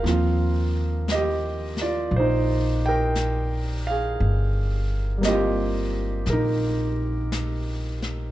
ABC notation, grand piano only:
X:1
M:4/4
L:1/8
Q:"Swing" 1/4=58
K:Eb
V:1 name="Grand piano"
[Bf]2 [Ge] [Fd] [Ec] [Bg]2 [Af]- | [Af] z [Ge]2 [EB]3 z |]
V:2 name="Grand piano"
[F,B,CF]8 | z2 [G,B,CF]6 |]